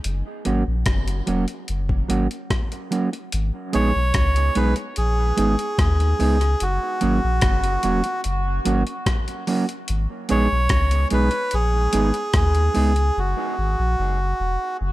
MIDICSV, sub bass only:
0, 0, Header, 1, 2, 480
1, 0, Start_track
1, 0, Key_signature, 5, "minor"
1, 0, Tempo, 819672
1, 23, Time_signature, 4, 2, 24, 8
1, 8739, End_track
2, 0, Start_track
2, 0, Title_t, "Sub bass"
2, 0, Program_c, 0, 38
2, 30, Note_on_c, 0, 30, 111
2, 135, Note_off_c, 0, 30, 0
2, 272, Note_on_c, 0, 32, 83
2, 376, Note_off_c, 0, 32, 0
2, 395, Note_on_c, 0, 34, 82
2, 492, Note_off_c, 0, 34, 0
2, 508, Note_on_c, 0, 30, 93
2, 714, Note_off_c, 0, 30, 0
2, 752, Note_on_c, 0, 28, 91
2, 856, Note_off_c, 0, 28, 0
2, 991, Note_on_c, 0, 30, 99
2, 1196, Note_off_c, 0, 30, 0
2, 1231, Note_on_c, 0, 32, 84
2, 1336, Note_off_c, 0, 32, 0
2, 1953, Note_on_c, 0, 32, 113
2, 2058, Note_off_c, 0, 32, 0
2, 2196, Note_on_c, 0, 34, 95
2, 2299, Note_off_c, 0, 34, 0
2, 2318, Note_on_c, 0, 35, 80
2, 2414, Note_off_c, 0, 35, 0
2, 2431, Note_on_c, 0, 37, 101
2, 2636, Note_off_c, 0, 37, 0
2, 2673, Note_on_c, 0, 35, 88
2, 2778, Note_off_c, 0, 35, 0
2, 2914, Note_on_c, 0, 34, 97
2, 3118, Note_off_c, 0, 34, 0
2, 3154, Note_on_c, 0, 32, 100
2, 3259, Note_off_c, 0, 32, 0
2, 3392, Note_on_c, 0, 39, 88
2, 3596, Note_off_c, 0, 39, 0
2, 3633, Note_on_c, 0, 37, 93
2, 3837, Note_off_c, 0, 37, 0
2, 3872, Note_on_c, 0, 30, 106
2, 3977, Note_off_c, 0, 30, 0
2, 4116, Note_on_c, 0, 32, 86
2, 4219, Note_off_c, 0, 32, 0
2, 4240, Note_on_c, 0, 34, 89
2, 4336, Note_off_c, 0, 34, 0
2, 4350, Note_on_c, 0, 30, 88
2, 4556, Note_off_c, 0, 30, 0
2, 4593, Note_on_c, 0, 28, 86
2, 4698, Note_off_c, 0, 28, 0
2, 4832, Note_on_c, 0, 30, 100
2, 5037, Note_off_c, 0, 30, 0
2, 5074, Note_on_c, 0, 32, 90
2, 5178, Note_off_c, 0, 32, 0
2, 5795, Note_on_c, 0, 32, 115
2, 5898, Note_off_c, 0, 32, 0
2, 6036, Note_on_c, 0, 34, 92
2, 6139, Note_off_c, 0, 34, 0
2, 6161, Note_on_c, 0, 35, 87
2, 6255, Note_off_c, 0, 35, 0
2, 6268, Note_on_c, 0, 37, 96
2, 6474, Note_off_c, 0, 37, 0
2, 6512, Note_on_c, 0, 35, 98
2, 6617, Note_off_c, 0, 35, 0
2, 6754, Note_on_c, 0, 34, 98
2, 6957, Note_off_c, 0, 34, 0
2, 6993, Note_on_c, 0, 32, 108
2, 7097, Note_off_c, 0, 32, 0
2, 7229, Note_on_c, 0, 39, 87
2, 7434, Note_off_c, 0, 39, 0
2, 7474, Note_on_c, 0, 37, 83
2, 7677, Note_off_c, 0, 37, 0
2, 7714, Note_on_c, 0, 30, 113
2, 7817, Note_off_c, 0, 30, 0
2, 7955, Note_on_c, 0, 32, 84
2, 8057, Note_off_c, 0, 32, 0
2, 8077, Note_on_c, 0, 34, 90
2, 8172, Note_off_c, 0, 34, 0
2, 8194, Note_on_c, 0, 30, 99
2, 8396, Note_off_c, 0, 30, 0
2, 8433, Note_on_c, 0, 28, 96
2, 8536, Note_off_c, 0, 28, 0
2, 8673, Note_on_c, 0, 30, 106
2, 8739, Note_off_c, 0, 30, 0
2, 8739, End_track
0, 0, End_of_file